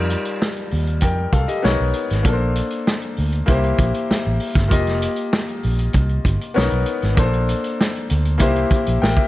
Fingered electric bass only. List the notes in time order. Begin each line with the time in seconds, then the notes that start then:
Already playing: F2
0.73 D#2
1.02 F2
1.33 C2
1.65 B1
1.80 B1
2.11 G#1
2.25 A#1
3.18 D2
3.48 C2
3.79 A#1
4.11 muted fingered electric bass stroke
4.27 A1
4.56 G1
4.71 F1
5.65 A#1
5.95 C2
6.25 G1
6.57 B1
6.72 B1
7.03 G#1
7.18 A#1
8.11 D2
8.41 C2
8.71 muted fingered electric bass stroke
8.88 A#1
9.03 A1